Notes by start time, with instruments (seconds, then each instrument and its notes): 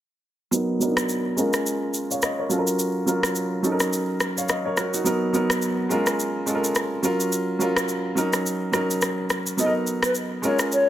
0.51 grand piano F#3 B3 D#4 A#4, shaker
0.80 grand piano F#3 B3 D4 A#4, shaker
0.88 grand piano D#4
0.97 cross-stick, shaker
1.09 shaker
1.36 grand piano G#3 C#4 F4 A#4, shaker
1.53 cross-stick, shaker
1.66 shaker
1.94 shaker
2.10 grand piano C#5 F5, shaker
2.22 grand piano D#5, cross-stick, shaker
2.39 grand piano A#4 C#5
2.49 grand piano F#3 C#4 F4 A4, shaker
2.58 grand piano A#4
2.67 shaker
2.79 shaker
3.06 grand piano F#3 C#4 F4 A#4, shaker
3.23 cross-stick, shaker
3.35 shaker
3.63 grand piano F#3 C#4 D#4 A4, shaker
3.72 grand piano A#4
3.80 cross-stick, shaker
3.93 shaker
4.20 cross-stick, shaker
4.37 grand piano C#5 F5, shaker
4.49 grand piano D#5, cross-stick, shaker
4.65 grand piano A#4 C#5
4.77 grand piano F#4 A#4, cross-stick, shaker
4.94 grand piano D#4 F#4, shaker
5.04 grand piano F#3 B3 D#4 A#4, shaker
5.33 grand piano F#3 B3 D#4 A#4, shaker
5.50 cross-stick, shaker
5.62 shaker
5.89 grand piano G#3 C#4 F4 A#4, shaker
6.07 cross-stick, shaker
6.20 shaker
6.46 grand piano G#3 C#4 F4 A4, shaker
6.55 grand piano A#4
6.64 shaker
6.75 cross-stick, shaker
7.02 grand piano F#3 C#4 F4 A#4, shaker
7.20 shaker
7.32 shaker
7.59 grand piano F#3 C#4 F4 A#4, shaker
7.76 cross-stick, shaker
7.88 shaker
8.15 grand piano F#3 C#4 D#4 A#4, shaker
8.33 cross-stick, shaker
8.46 shaker
8.72 grand piano F#3 C#4 D#4 A#4, cross-stick, shaker
8.91 shaker
9.02 cross-stick, shaker
9.30 cross-stick, shaker
9.47 shaker
9.57 grand piano F#3 B3 D#4 A4, soft synth lead D#5, shaker
9.66 grand piano A#4
9.87 shaker
10.03 soft synth lead B4, cross-stick, shaker
10.15 shaker
10.42 grand piano G#3 C#4 F4 A#4, soft synth lead C#5, shaker
10.59 cross-stick, shaker
10.72 soft synth lead C#5, shaker